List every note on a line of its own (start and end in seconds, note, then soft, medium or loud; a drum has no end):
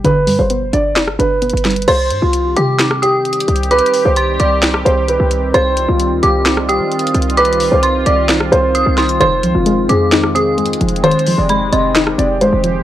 0.00 0.73 B2 medium
0.00 0.26 G3 medium
0.00 0.50 D4 medium
0.00 0.27 D5 loud
0.04 0.29 G1 loud
0.04 1.19 D3 loud
0.04 0.37 B4 loud
0.04 closed hi-hat medium
0.27 0.38 G2 loud
0.27 1.42 G3 medium
0.27 open hi-hat medium
0.39 0.72 G1 loud
0.39 0.71 C5 medium
0.50 1.41 B3 medium
0.50 closed hi-hat medium
0.73 0.98 G1 loud
0.73 1.18 D4 medium
0.73 0.95 D5 medium
0.73 closed hi-hat medium
0.95 1.09 F1 loud
0.95 1.87 D5 loud
0.95 snare loud
0.95 closed hi-hat medium
1.08 1.18 G1 loud
1.08 cross-stick medium
1.19 1.52 G1 loud
1.19 1.88 D4 medium
1.19 1.84 B4 medium
1.19 closed hi-hat medium
1.42 1.88 B3 medium
1.42 closed hi-hat medium
1.50 1.86 G1 loud
1.50 closed hi-hat medium
1.57 closed hi-hat medium
1.65 1.88 G3 medium
1.65 snare medium
1.65 closed hi-hat medium
1.71 closed hi-hat medium
1.76 closed hi-hat medium
1.82 closed hi-hat medium
1.88 2.12 C2 loud
1.88 12.83 D#3 medium
1.88 9.17 G3 medium
1.88 12.83 C4 medium
1.88 5.50 G4 medium
1.88 2.20 C5 loud
1.88 2.52 C6 loud
1.88 closed hi-hat medium
1.88 crash loud
2.10 2.22 G2 loud
2.10 closed hi-hat medium
2.22 2.55 C2 loud
2.22 2.54 F4 medium
2.33 closed hi-hat medium
2.56 3.44 C3 loud
2.56 2.78 G4 medium
2.56 3.00 D6 medium
2.56 closed hi-hat medium
2.79 snare loud
2.79 closed hi-hat medium
2.91 cross-stick loud
3.02 3.67 G4 medium
3.02 3.67 D#6 medium
3.02 closed hi-hat medium
3.25 closed hi-hat soft
3.33 closed hi-hat medium
3.40 closed hi-hat medium
3.48 3.81 C2 loud
3.48 closed hi-hat medium
3.56 closed hi-hat medium
3.63 closed hi-hat medium
3.71 4.03 B4 loud
3.71 4.14 D6 loud
3.71 closed hi-hat medium
3.79 closed hi-hat medium
3.86 closed hi-hat medium
3.94 open hi-hat medium
4.05 4.38 C2 loud
4.05 4.38 C5 medium
4.16 4.39 C6 loud
4.16 closed hi-hat medium
4.40 4.84 C2 loud
4.40 4.61 D5 medium
4.40 4.61 D6 medium
4.40 closed hi-hat medium
4.63 snare loud
4.63 closed hi-hat medium
4.74 cross-stick loud
4.85 5.18 C2 loud
4.85 5.07 C5 medium
4.85 closed hi-hat medium
5.08 5.51 B4 medium
5.08 closed hi-hat medium
5.20 5.53 C2 loud
5.31 closed hi-hat medium
5.54 5.87 C2 loud
5.54 11.00 F4 loud
5.54 5.86 C5 loud
5.54 6.19 C6 loud
5.54 closed hi-hat medium
5.77 closed hi-hat medium
5.88 6.13 C2 loud
5.88 6.21 F4 medium
6.00 closed hi-hat medium
6.11 6.22 D2 loud
6.23 6.82 C2 loud
6.23 6.44 G4 medium
6.23 6.66 D6 medium
6.23 closed hi-hat medium
6.46 snare loud
6.46 closed hi-hat medium
6.57 cross-stick loud
6.69 7.33 G4 medium
6.69 7.33 D#6 medium
6.69 closed hi-hat medium
6.80 7.13 G3 loud
6.92 closed hi-hat soft
6.99 closed hi-hat medium
7.07 closed hi-hat medium
7.14 7.69 C2 loud
7.14 closed hi-hat medium
7.22 closed hi-hat medium
7.30 closed hi-hat medium
7.37 7.70 B4 loud
7.37 7.80 D6 loud
7.37 closed hi-hat medium
7.45 closed hi-hat medium
7.53 closed hi-hat medium
7.60 open hi-hat medium
7.72 8.05 C2 loud
7.72 8.04 C5 medium
7.83 8.05 C6 medium
7.83 closed hi-hat medium
8.06 8.30 C2 loud
8.06 8.28 D5 medium
8.06 8.28 D6 medium
8.06 closed hi-hat medium
8.29 8.42 B1 loud
8.29 snare loud
8.29 closed hi-hat medium
8.40 8.51 C2 loud
8.40 cross-stick loud
8.52 8.85 C2 loud
8.52 9.17 C5 loud
8.52 closed hi-hat medium
8.75 8.97 D#6 medium
8.75 closed hi-hat medium
8.86 9.19 C2 loud
8.98 9.19 C6 medium
8.98 snare medium
8.98 closed hi-hat soft
9.09 closed hi-hat medium
9.20 9.45 F1 loud
9.20 10.35 D#3 medium
9.20 12.83 G#3 medium
9.20 9.53 C5 loud
9.20 9.85 C6 loud
9.20 closed hi-hat medium
9.43 9.54 C2 loud
9.43 10.58 F3 medium
9.43 closed hi-hat medium
9.55 9.88 F1 loud
9.55 9.87 F4 medium
9.66 10.57 G#3 loud
9.66 closed hi-hat medium
9.89 10.77 F2 loud
9.89 10.34 C4 medium
9.89 10.11 G#4 medium
9.89 10.32 D6 medium
9.89 closed hi-hat medium
10.12 11.27 D#4 loud
10.12 snare loud
10.12 closed hi-hat medium
10.24 cross-stick loud
10.35 11.49 C4 medium
10.35 11.00 G#4 medium
10.35 11.00 D#6 medium
10.35 closed hi-hat medium
10.58 11.49 G#3 medium
10.58 closed hi-hat soft
10.66 closed hi-hat medium
10.73 closed hi-hat medium
10.81 11.14 F1 loud
10.81 11.26 F3 medium
10.81 closed hi-hat medium
10.89 closed hi-hat medium
10.96 closed hi-hat medium
11.03 12.18 D#3 loud
11.03 12.83 G4 loud
11.03 11.36 C5 loud
11.03 11.47 C6 loud
11.03 closed hi-hat medium
11.11 closed hi-hat medium
11.19 closed hi-hat medium
11.27 12.42 F3 medium
11.27 open hi-hat medium
11.38 11.71 F1 loud
11.38 11.70 D5 medium
11.49 12.41 G#3 medium
11.49 11.71 B5 medium
11.49 closed hi-hat medium
11.72 12.16 F1 loud
11.72 12.17 C4 medium
11.72 11.94 D#5 medium
11.72 11.94 C6 medium
11.72 closed hi-hat medium
11.95 12.83 D#4 loud
11.95 snare loud
11.95 closed hi-hat medium
12.07 cross-stick loud
12.18 12.51 F1 loud
12.18 12.83 C4 medium
12.18 12.40 D5 medium
12.18 closed hi-hat medium
12.41 12.83 G#3 medium
12.41 12.83 C5 medium
12.41 closed hi-hat medium
12.53 12.83 F1 loud
12.64 12.83 F3 medium
12.64 closed hi-hat medium